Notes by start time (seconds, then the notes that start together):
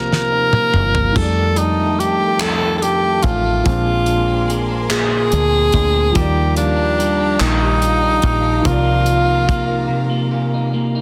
Already playing: C2 C3 D#3 F3 A#3 D#4 A#4 D5
0.12 F3, snare
0.32 D#2 D#4
0.53 A#3, mid tom
0.74 G1 F3, mid tom
0.95 A#3, floor tom
1.13 F2 D#3 G3 A4 G5 D6, kick, splash
1.17 F2 G#3 A4
1.22 A3 D5
1.38 D#3
1.56 D4 D#4, closed hi-hat
1.80 A3
1.99 D#3 G4, closed hi-hat
2.21 A3
2.39 C2 F2 A4, clap, closed hi-hat
2.61 D#3
2.78 A4
2.82 D4 G4, closed hi-hat
3.03 A3
3.23 A1 D#3 F4, kick, closed hi-hat
3.45 A3
3.64 A#1 A#2 F3 G#3 F4 A#4 G#5 C6, kick, closed hi-hat
3.69 C4 D4
3.86 G#3
4.06 D4, closed hi-hat
4.27 C4
4.48 G#3, closed hi-hat
4.69 C4
4.89 A#2 G#4, clap, closed hi-hat
5.11 G#3
5.31 D2 D4, closed hi-hat
5.51 C4
5.72 D2 G#3, kick, closed hi-hat
5.93 C4
6.11 D#3 F3 G3 D6
6.15 D#2 A#3 G4 F5 A#5, kick, closed hi-hat
6.21 D5
6.37 G3
6.56 D4 F4, closed hi-hat
6.77 D4
6.98 G3, closed hi-hat
7.19 D4
7.40 A#1 D#3 D#4, clap, closed hi-hat
7.61 G3
7.82 F4, closed hi-hat
8.02 D4
8.22 A#1, kick, closed hi-hat
8.42 D4
8.62 C2 C3 D#3 F3, kick, closed hi-hat
8.66 A#3 F4 A#4
8.71 D5
8.83 A#3
9.03 F4, closed hi-hat
9.25 D#4
9.47 A#3, kick, closed hi-hat
9.68 D#4
9.88 C3
10.10 A#3
10.31 F4
10.54 D#4
10.74 A#3
10.95 D#4